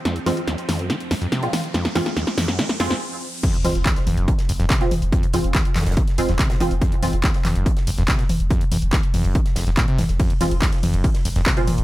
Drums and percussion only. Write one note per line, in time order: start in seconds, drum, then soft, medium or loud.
0.05 snare medium
0.05 closed hi-hat medium
0.16 closed hi-hat medium
0.26 snare medium
0.26 open hi-hat loud
0.26 mid tom medium
0.37 closed hi-hat medium
0.48 snare medium
0.48 closed hi-hat medium
0.58 closed hi-hat medium
0.69 snare medium
0.69 open hi-hat loud
0.69 mid tom medium
0.79 closed hi-hat medium
0.90 snare medium
0.90 closed hi-hat medium
1.00 closed hi-hat medium
1.11 snare medium
1.11 open hi-hat loud
1.22 closed hi-hat medium
1.32 snare medium
1.32 closed hi-hat medium
1.43 closed hi-hat medium
1.53 snare medium
1.53 open hi-hat loud
1.53 mid tom medium
1.64 closed hi-hat medium
1.74 snare medium
1.74 closed hi-hat medium
1.85 snare medium
1.85 closed hi-hat medium
1.95 snare loud
1.95 open hi-hat loud
1.95 mid tom medium
2.06 snare medium
2.06 closed hi-hat medium
2.17 snare medium
2.17 closed hi-hat medium
2.27 snare medium
2.27 closed hi-hat medium
2.38 snare loud
2.38 open hi-hat loud
2.38 mid tom medium
2.48 snare medium
2.48 closed hi-hat medium
2.59 snare loud
2.59 closed hi-hat medium
2.69 snare medium
2.69 closed hi-hat medium
2.80 snare loud
2.80 open hi-hat loud
2.90 snare medium
2.90 closed hi-hat medium
3.43 kick loud
3.43 closed hi-hat medium
3.43 crash loud
3.54 closed hi-hat medium
3.64 snare medium
3.64 closed hi-hat medium
3.64 open hi-hat loud
3.64 mid tom medium
3.75 closed hi-hat medium
3.85 kick loud
3.85 snare loud
3.85 clap loud
3.85 closed hi-hat medium
3.96 snare medium
3.96 closed hi-hat medium
4.07 closed hi-hat medium
4.07 open hi-hat medium
4.07 mid tom medium
4.17 closed hi-hat medium
4.28 kick loud
4.28 closed hi-hat medium
4.38 snare medium
4.38 closed hi-hat medium
4.49 closed hi-hat medium
4.49 open hi-hat loud
4.60 snare soft
4.60 closed hi-hat medium
4.69 kick loud
4.69 snare loud
4.69 clap loud
4.69 closed hi-hat medium
4.81 snare soft
4.81 closed hi-hat medium
4.91 closed hi-hat medium
4.91 open hi-hat loud
4.91 mid tom medium
5.02 closed hi-hat medium
5.12 kick loud
5.12 closed hi-hat medium
5.12 closed hi-hat loud
5.23 closed hi-hat soft
5.23 closed hi-hat medium
5.33 closed hi-hat medium
5.33 open hi-hat loud
5.33 mid tom medium
5.44 closed hi-hat medium
5.54 kick loud
5.54 snare loud
5.54 clap loud
5.54 closed hi-hat loud
5.54 closed hi-hat medium
5.65 closed hi-hat medium
5.75 snare medium
5.75 clap medium
5.75 closed hi-hat medium
5.75 open hi-hat loud
5.75 mid tom medium
5.81 snare medium
5.81 closed hi-hat medium
5.86 snare medium
5.86 closed hi-hat medium
5.91 snare medium
5.91 closed hi-hat medium
5.97 kick loud
5.97 closed hi-hat loud
5.97 closed hi-hat medium
6.08 snare soft
6.08 closed hi-hat medium
6.18 closed hi-hat medium
6.18 open hi-hat loud
6.29 snare medium
6.29 closed hi-hat medium
6.39 kick loud
6.39 snare loud
6.39 clap loud
6.39 closed hi-hat medium
6.50 snare loud
6.50 closed hi-hat medium
6.60 snare medium
6.60 closed hi-hat medium
6.60 open hi-hat loud
6.60 mid tom medium
6.71 closed hi-hat medium
6.82 kick loud
6.82 closed hi-hat medium
6.92 closed hi-hat medium
7.03 snare medium
7.03 closed hi-hat medium
7.03 open hi-hat loud
7.03 mid tom medium
7.13 closed hi-hat medium
7.24 kick loud
7.24 snare loud
7.24 clap loud
7.24 closed hi-hat medium
7.34 snare medium
7.34 closed hi-hat medium
7.45 clap medium
7.45 closed hi-hat medium
7.45 open hi-hat loud
7.45 mid tom medium
7.55 closed hi-hat medium
7.66 kick loud
7.66 closed hi-hat medium
7.77 snare soft
7.77 closed hi-hat medium
7.87 closed hi-hat medium
7.87 open hi-hat loud
7.98 snare soft
7.98 closed hi-hat medium
8.08 kick loud
8.08 snare loud
8.08 clap loud
8.08 closed hi-hat loud
8.08 closed hi-hat medium
8.19 snare medium
8.19 closed hi-hat medium
8.29 closed hi-hat medium
8.29 open hi-hat loud
8.29 mid tom loud
8.40 closed hi-hat medium
8.51 kick loud
8.51 closed hi-hat medium
8.61 closed hi-hat soft
8.61 closed hi-hat medium
8.72 closed hi-hat medium
8.72 open hi-hat loud
8.72 mid tom loud
8.82 closed hi-hat medium
8.93 kick loud
8.93 snare loud
8.93 clap loud
8.93 closed hi-hat medium
9.03 closed hi-hat medium
9.14 open hi-hat medium
9.14 open hi-hat loud
9.14 mid tom medium
9.24 closed hi-hat medium
9.35 kick loud
9.35 closed hi-hat medium
9.45 snare soft
9.45 closed hi-hat medium
9.56 snare loud
9.56 closed hi-hat medium
9.56 open hi-hat loud
9.67 snare soft
9.67 closed hi-hat medium
9.77 kick loud
9.77 clap loud
9.77 closed hi-hat medium
9.88 closed hi-hat medium
9.98 snare medium
9.98 closed hi-hat medium
9.98 open hi-hat loud
9.98 mid tom loud
10.09 snare soft
10.09 closed hi-hat medium
10.20 kick loud
10.20 closed hi-hat medium
10.20 closed hi-hat loud
10.20 ride medium
10.30 closed hi-hat medium
10.30 ride medium
10.41 snare soft
10.41 closed hi-hat medium
10.41 open hi-hat loud
10.41 mid tom medium
10.41 ride medium
10.51 closed hi-hat medium
10.51 ride medium
10.62 kick loud
10.62 snare loud
10.62 clap loud
10.62 closed hi-hat medium
10.62 closed hi-hat loud
10.62 ride medium
10.72 snare medium
10.72 closed hi-hat soft
10.72 ride medium
10.83 closed hi-hat medium
10.83 open hi-hat medium
10.83 mid tom medium
10.83 ride medium
10.94 closed hi-hat medium
10.94 ride medium
11.04 kick loud
11.04 closed hi-hat medium
11.04 ride medium
11.14 snare soft
11.14 closed hi-hat soft
11.14 ride medium
11.25 closed hi-hat medium
11.25 open hi-hat loud
11.25 ride medium
11.36 snare soft
11.36 closed hi-hat medium
11.36 ride medium
11.46 kick loud
11.46 snare loud
11.46 clap loud
11.46 closed hi-hat medium
11.46 ride medium
11.57 snare medium
11.57 closed hi-hat medium
11.57 ride medium
11.67 closed hi-hat medium
11.67 open hi-hat medium
11.67 mid tom loud
11.67 ride medium
11.78 closed hi-hat soft
11.78 ride medium